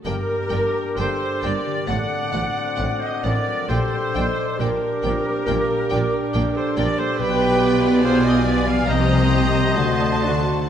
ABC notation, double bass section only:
X:1
M:4/4
L:1/8
Q:1/4=67
K:Gm
V:1 name="Double bass section" clef=bass
G,,, G,,, G,,, G,,, A,,, A,,, A,,, A,,, | B,,, B,,, B,,, B,,, B,,, B,,, B,,, B,,, | =B,,,4 C,,2 D,,2 |]